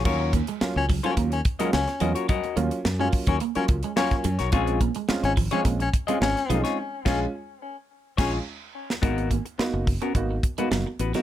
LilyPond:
<<
  \new Staff \with { instrumentName = "Clean electric guitar" } { \time 4/4 \key ees \minor \tempo 4 = 107 <ges' bes' des''>8 r4 r16 <ges' bes' des''>16 r8. <ges' bes' ees''>16 r8 <ges' bes' ees''>16 <ges' bes' des''>16 | <ges' bes' ees''>8 r4 r16 <ges' bes' des''>16 r16 <ges' bes' des''>16 r8 <ges' bes' des''>16 r8 <ges' bes' des''>16 | <f' aes' des''>8 r4 r16 <f' aes' des''>16 r8. <f' aes' ees''>16 r8 <f' aes' ees''>16 <f' aes' des''>16 | r8 <f' aes'>8 r4. <f' aes' des''>8 r4 |
<ces' ges' bes'>8 r4 r16 <ces' ges' bes'>16 r8. <ces' ges' ces''>16 r8 <ces' ges' ces''>16 <ces' ges' bes'>16 | }
  \new Staff \with { instrumentName = "Baritone saxophone" } { \time 4/4 \key ees \minor r4 r16 des'16 r16 des'16 r16 des'16 r8 des'8. r16 | r4 r16 des'16 r16 des'16 r16 des'16 r8 des'8. r16 | r4 r16 des'16 r16 des'16 r16 des'16 r8 des'8. r16 | r8 des'8 r4. des'8 r4 |
r1 | }
  \new Staff \with { instrumentName = "Upright piano" } { \time 4/4 \key ees \minor <ges bes des' f'>8 r8 <ges bes des' f'>16 r8 <ges bes des' f'>8 r8 <ges bes des' f'>16 r8 <ges bes des' f'>8 | r8 <ges bes des' f'>16 r8 <ges bes des' f'>8 r8 <ges bes des' f'>16 r8 <ges bes des' f'>8 r8 | <aes c' des' f'>8 r8 <aes c' des' f'>16 r8 <aes c' des' f'>8 r8 <aes c' des' f'>16 r8 <aes c' des' ees'>8 | r8 <aes des' f'>8 r4. <aes des' f'>8 r4 |
<bes ces' ees' ges'>8 r8 <bes ces' ees' ges'>8 r8 <bes ces' ees' ges'>16 r8 <bes ces' ees' ges'>8 r8 <bes ces' ees' ges'>16 | }
  \new Staff \with { instrumentName = "Clean electric guitar" } { \clef bass \time 4/4 \key ees \minor r8 bes16 aes16 r8 ges16 ges16 bes16 r8 aes16 r8 ges16 r16 | ges16 r16 bes16 r8 aes16 r16 ges16 bes16 r8 aes16 r8 ges16 r16 | r8 bes16 aes16 r8 f16 f16 bes16 r8 aes16 r8 f16 r16 | r1 |
aes16 r16 bes16 r16 ces'16 r8 des'16 ces'16 r8 aes16 ges16 r8 ges16 | }
  \new Staff \with { instrumentName = "Fingered electric bass" } { \clef bass \time 4/4 \key ees \minor ees,8. r8 des,8 r16 ees,8 r8 des,16 r16 fes,16 r16 | r8 ees,16 r16 ges,8 r16 ees,16 r8 des,16 r8. ges,16 ces,16 | bes,,8. r8 aes,,8 r16 bes,,8 r8 aes,,16 r16 ces,16 r16 | r8 bes,,8 r4. bes,,8 r4 |
aes,,8. r8 ges,,8 r16 aes,,8 r8 ges,,16 r16 a,,16 r16 | }
  \new DrumStaff \with { instrumentName = "Drums" } \drummode { \time 4/4 <cymc bd>8 <hh bd>16 hh16 sn8 <hho bd>16 hh16 <hh bd>16 hh16 <hh bd>16 hh16 sn16 <hh sn>16 hh16 hh16 | <hh bd>16 hh16 hh16 hh16 sn8 <hho bd>16 <hh bd>16 hh16 hh16 <hh bd>16 hh16 sn16 <hh bd sn>16 hh16 <hh sn>16 | <hh bd>16 hh16 <hh bd>16 hh16 sn16 hh16 <hho bd>16 hh16 <hh bd>16 hh16 <hh bd>16 hh16 sn16 <hh sn>16 hh16 <hh sn>16 | r8 <cymc bd sn>8 r4 r8 <cymc bd sn>8 r8. sn16 |
<hh bd>16 hh16 <hh bd>16 hh16 sn8 <hho bd>16 hh16 <hh bd>8 <hh bd>16 hh16 sn8 hh16 <hh sn>16 | }
>>